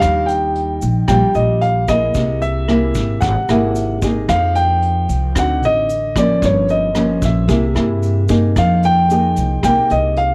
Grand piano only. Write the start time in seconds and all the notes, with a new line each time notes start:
0.00 F5
0.26 G5
1.08 G5
1.35 D#5
1.61 F5
1.89 D#5
2.42 E5
3.21 F#5
4.29 F5
4.55 G5
5.38 F#5
5.65 D#5
6.18 D5
6.45 C#5
6.70 D#5
7.25 E5
8.58 F5
8.85 G5
9.65 G5
9.92 D#5
10.18 F5